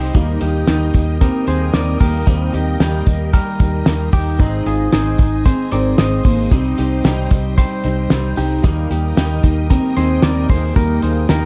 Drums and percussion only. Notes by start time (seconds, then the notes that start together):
0.14 kick, closed hi-hat, tambourine
0.41 closed hi-hat
0.67 snare, closed hi-hat, tambourine
0.94 kick, closed hi-hat, tambourine
1.21 kick, closed hi-hat
1.47 closed hi-hat, tambourine
1.74 snare, closed hi-hat, tambourine
2.00 kick, open hi-hat, tambourine
2.27 kick, closed hi-hat, tambourine
2.54 closed hi-hat
2.80 snare, closed hi-hat, tambourine
3.06 kick, closed hi-hat, tambourine
3.33 kick, closed hi-hat, tambourine
3.60 kick, closed hi-hat, tambourine
3.86 snare, closed hi-hat, tambourine
4.12 kick, open hi-hat, tambourine
4.39 kick, closed hi-hat, tambourine
4.66 closed hi-hat, tambourine
4.92 snare, closed hi-hat, tambourine
5.18 kick, closed hi-hat, tambourine
5.45 kick, closed hi-hat, tambourine
5.72 closed hi-hat, tambourine
5.98 snare, closed hi-hat, tambourine
6.23 kick, open hi-hat, tambourine
6.50 kick, closed hi-hat, tambourine
6.78 closed hi-hat, tambourine
7.04 snare, closed hi-hat, tambourine
7.31 kick, closed hi-hat, tambourine
7.57 kick, closed hi-hat, tambourine
7.84 closed hi-hat, tambourine
8.10 snare, closed hi-hat, tambourine
8.36 open hi-hat, tambourine
8.63 kick, closed hi-hat, tambourine
8.91 closed hi-hat, tambourine
9.17 snare, closed hi-hat, tambourine
9.43 kick, closed hi-hat, tambourine
9.71 kick, closed hi-hat, tambourine
9.96 closed hi-hat, tambourine
10.22 snare, closed hi-hat, tambourine
10.49 kick, open hi-hat, tambourine
10.76 kick, closed hi-hat, tambourine
11.02 closed hi-hat, tambourine
11.29 snare, closed hi-hat, tambourine